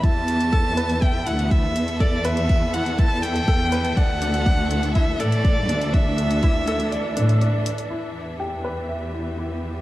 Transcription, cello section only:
X:1
M:4/4
L:1/8
Q:1/4=122
K:Dmix
V:1 name="Cello section" clef=bass
E,,4- E,, D,,2 E,,- | E,,6 E,,2 | D,,4- D,, A,,2 D,,- | D,,4- D,, A,,2 z |
E,,8 |]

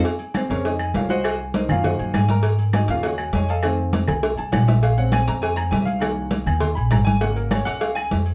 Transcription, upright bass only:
X:1
M:4/4
L:1/8
Q:1/4=201
K:Bbm
V:1 name="Upright bass" clef=bass
z3 F,,3 C,,2- | C,,3 G,,2 G,, A,,2- | A,,3 E,,3 F,,2- | F,,3 C,,2 C,, B,,,2- |
B,,,3 F,,3 C,,2- | C,,3 E,,2 B,,, A,,,2- | A,,,3 D,,3 F,,2 |]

